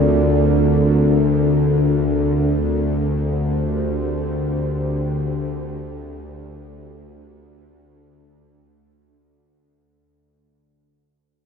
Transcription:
Already playing: D2 D3 C4 F4 A#4 D5
2.46 G4
2.65 C5

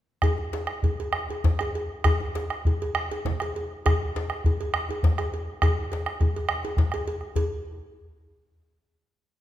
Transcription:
0.22 bombo rim, bombo low, cowbell, djembe bass
0.38 djembe slap, djembe tone
0.53 cowbell, djembe slap
0.67 bombo rim
0.83 bombo low, cowbell, djembe bass
1.00 cowbell
1.13 bombo rim, djembe slap
1.29 cowbell, djembe tone
1.44 bombo low, djembe slap, djembe bass
1.59 bombo rim, cowbell
1.75 cowbell
2.04 bombo rim, bombo low, cowbell, djembe bass
2.20 djembe slap, djembe tone
2.35 cowbell, djembe slap
2.50 bombo rim
2.65 bombo low, cowbell, djembe bass
2.82 cowbell
2.95 bombo rim, djembe slap
3.11 cowbell, djembe tone
3.25 bombo low, djembe slap, djembe bass
3.40 bombo rim, cowbell
3.56 cowbell
3.71 djembe slap
3.86 bombo rim, bombo low, cowbell, djembe bass
4.01 djembe slap
4.16 cowbell, djembe slap
4.30 bombo rim
4.44 bombo low, cowbell, djembe bass
4.61 cowbell
4.74 bombo rim, djembe slap
4.89 cowbell, djembe tone
5.03 bombo low, djembe slap, djembe bass
5.18 bombo rim, cowbell
5.34 cowbell
5.48 djembe slap
5.62 bombo rim, bombo low, cowbell, djembe bass
5.78 djembe tone
5.92 cowbell, djembe slap
6.06 bombo rim, djembe slap
6.20 bombo rim, bombo low, cowbell, djembe bass
6.36 cowbell
6.49 bombo rim
6.63 bombo rim, cowbell, djembe slap, djembe tone
6.77 bombo rim, bombo low, djembe slap, djembe bass
6.92 bombo rim, cowbell
7.08 cowbell
7.21 bombo rim
7.36 bombo low, cowbell, djembe bass

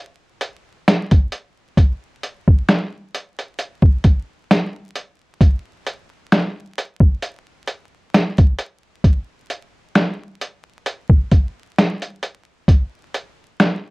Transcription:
0.41 closed hi-hat
0.88 finger snap, snare, closed hi-hat
1.11 kick, closed hi-hat
1.32 closed hi-hat
1.77 kick, closed hi-hat
2.23 closed hi-hat
2.48 kick
2.69 finger snap, snare, closed hi-hat
3.15 closed hi-hat
3.39 closed hi-hat
3.59 closed hi-hat
3.82 kick
4.04 kick, closed hi-hat
4.51 finger snap, snare, closed hi-hat
4.96 closed hi-hat
5.41 kick, closed hi-hat
5.87 closed hi-hat
6.32 finger snap, snare, closed hi-hat
6.78 closed hi-hat
7.00 kick
7.22 closed hi-hat
7.67 closed hi-hat
8.14 finger snap, snare, closed hi-hat
8.38 kick, closed hi-hat
8.59 closed hi-hat
9.04 kick, closed hi-hat
9.50 closed hi-hat
9.95 finger snap, snare, closed hi-hat
10.41 closed hi-hat
10.86 closed hi-hat
11.10 kick
11.31 kick, closed hi-hat
11.78 finger snap, snare, closed hi-hat
12.02 closed hi-hat
12.23 closed hi-hat
12.68 kick, closed hi-hat
13.14 closed hi-hat
13.60 finger snap, snare, closed hi-hat

